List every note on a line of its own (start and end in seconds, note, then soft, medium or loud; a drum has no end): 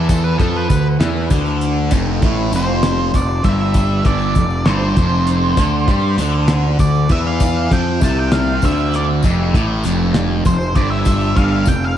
0.00 0.36 E2 medium
0.00 0.38 E3 loud
0.09 0.24 A4 medium
0.09 kick medium
0.09 closed hi-hat medium
0.09 tambourine medium
0.24 0.38 B4 medium
0.39 0.69 F2 medium
0.39 0.69 F3 loud
0.39 0.56 A4 medium
0.39 kick loud
0.39 closed hi-hat medium
0.56 0.87 B4 medium
0.69 0.99 D2 medium
0.69 0.95 D3 medium
0.69 kick medium
0.69 closed hi-hat medium
0.69 tambourine medium
1.00 1.29 E2 medium
1.00 1.30 E3 loud
1.00 snare medium
1.00 closed hi-hat medium
1.30 1.89 D2 medium
1.30 1.91 D3 loud
1.30 kick medium
1.30 closed hi-hat medium
1.30 tambourine medium
1.46 tambourine soft
1.61 closed hi-hat medium
1.61 tambourine soft
1.91 2.21 F1 medium
1.91 2.22 F2 loud
1.91 kick medium
1.91 closed hi-hat medium
1.91 tambourine medium
2.22 2.52 A1 medium
2.22 2.52 A2 loud
2.22 kick loud
2.22 closed hi-hat medium
2.52 3.10 F1 medium
2.52 3.13 F2 loud
2.52 3.18 C5 medium
2.52 closed hi-hat medium
2.52 tambourine medium
2.83 snare loud
2.83 closed hi-hat medium
3.14 3.43 F1 medium
3.14 3.39 F2 medium
3.14 3.44 D5 medium
3.14 kick medium
3.14 closed hi-hat medium
3.14 tambourine medium
3.29 tambourine soft
3.44 4.02 G1 medium
3.44 4.04 G2 loud
3.44 4.06 E5 loud
3.44 kick loud
3.44 closed hi-hat medium
3.44 tambourine soft
3.74 kick medium
3.74 closed hi-hat medium
3.74 tambourine medium
4.05 4.34 G1 medium
4.05 4.35 G2 loud
4.05 4.69 D5 loud
4.05 kick medium
4.05 closed hi-hat medium
4.20 tambourine soft
4.35 4.65 F1 medium
4.35 4.61 F2 medium
4.35 kick medium
4.35 closed hi-hat medium
4.35 tambourine medium
4.50 tambourine soft
4.65 4.95 G1 medium
4.65 4.97 G2 loud
4.65 6.14 C5 medium
4.65 snare loud
4.65 closed hi-hat medium
4.97 5.54 F1 medium
4.97 5.57 F2 loud
4.97 kick loud
4.97 closed hi-hat medium
5.27 closed hi-hat medium
5.57 5.86 D2 medium
5.57 5.88 D3 loud
5.57 kick medium
5.57 closed hi-hat medium
5.57 tambourine medium
5.88 6.17 G2 medium
5.88 6.18 G3 loud
5.88 kick loud
5.88 closed hi-hat medium
6.18 6.75 D2 medium
6.18 6.79 D3 medium
6.18 closed hi-hat medium
6.18 tambourine medium
6.48 snare loud
6.48 closed hi-hat medium
6.79 7.08 D2 medium
6.79 7.04 D3 medium
6.79 7.11 D5 medium
6.79 kick medium
6.79 closed hi-hat medium
6.79 tambourine medium
6.95 tambourine soft
7.09 7.67 E2 medium
7.09 7.70 E3 medium
7.09 7.27 E5 medium
7.09 kick loud
7.09 closed hi-hat medium
7.09 tambourine soft
7.27 7.73 F5 medium
7.40 kick loud
7.40 closed hi-hat medium
7.40 tambourine medium
7.71 8.00 F2 medium
7.71 8.01 F3 loud
7.71 8.03 G5 medium
7.71 kick loud
7.71 closed hi-hat medium
8.01 8.59 C2 medium
8.01 8.62 C3 medium
8.01 8.19 A5 loud
8.01 kick loud
8.01 closed hi-hat medium
8.01 tambourine medium
8.19 8.32 G5 medium
8.32 8.64 F5 medium
8.32 snare loud
8.32 closed hi-hat medium
8.62 9.20 D2 loud
8.62 9.23 D3 loud
8.62 8.92 E5 medium
8.62 kick loud
8.62 closed hi-hat medium
8.62 tambourine medium
8.77 tambourine soft
8.92 9.04 D5 medium
8.92 closed hi-hat medium
8.92 tambourine soft
9.23 9.52 F1 medium
9.23 9.54 F2 loud
9.23 kick medium
9.23 closed hi-hat medium
9.23 tambourine medium
9.54 9.82 A1 medium
9.54 9.84 A2 loud
9.54 kick loud
9.54 closed hi-hat medium
9.84 10.41 F1 medium
9.84 10.44 F2 loud
9.84 closed hi-hat medium
9.84 tambourine medium
10.14 snare loud
10.14 closed hi-hat medium
10.45 10.74 F1 medium
10.45 10.70 F2 medium
10.45 10.77 C5 medium
10.45 kick medium
10.45 closed hi-hat medium
10.45 tambourine medium
10.60 tambourine soft
10.75 11.33 G1 medium
10.75 11.36 G2 loud
10.75 10.90 D5 medium
10.75 kick medium
10.75 closed hi-hat medium
10.75 tambourine soft
10.90 11.37 E5 medium
11.05 kick loud
11.05 closed hi-hat medium
11.05 tambourine medium
11.21 tambourine soft
11.37 11.65 G1 medium
11.37 11.67 G2 medium
11.37 11.68 F5 medium
11.37 kick loud
11.37 closed hi-hat medium
11.66 11.96 F1 medium
11.66 11.92 F2 medium
11.66 11.83 G5 loud
11.66 kick medium
11.66 closed hi-hat medium
11.66 tambourine medium
11.85 11.97 F5 medium